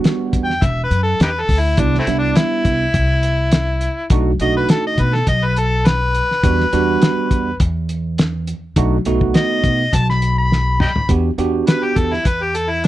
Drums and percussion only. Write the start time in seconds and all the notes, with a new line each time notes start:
0.04 snare, closed hi-hat
0.33 kick, closed hi-hat
0.50 snare
0.62 kick, closed hi-hat
0.91 closed hi-hat
1.20 snare, closed hi-hat
1.49 kick, open hi-hat
1.77 kick, closed hi-hat
1.94 snare
2.07 snare, closed hi-hat
2.36 snare, closed hi-hat
2.65 kick, closed hi-hat
2.94 kick, closed hi-hat
3.23 closed hi-hat
3.52 snare, closed hi-hat
3.81 closed hi-hat
4.10 kick, closed hi-hat
4.40 closed hi-hat
4.69 snare, closed hi-hat
4.98 kick, closed hi-hat
5.14 snare
5.27 kick, closed hi-hat
5.57 closed hi-hat
5.85 snare, closed hi-hat
6.15 closed hi-hat
6.31 snare
6.44 kick, closed hi-hat
6.60 snare
6.73 closed hi-hat
7.02 snare, closed hi-hat
7.31 kick, closed hi-hat
7.60 kick, closed hi-hat
7.89 closed hi-hat
8.18 snare, closed hi-hat
8.47 closed hi-hat
8.76 kick, closed hi-hat
9.05 closed hi-hat
9.21 kick
9.34 snare, closed hi-hat
9.64 kick, closed hi-hat
9.93 kick, closed hi-hat
10.10 snare
10.22 closed hi-hat
10.52 snare
10.80 mid tom
10.96 floor tom
11.09 kick, closed hi-hat
11.38 closed hi-hat
11.67 snare, closed hi-hat
11.96 kick, closed hi-hat
12.13 snare
12.25 kick, closed hi-hat
12.55 closed hi-hat
12.84 closed hi-hat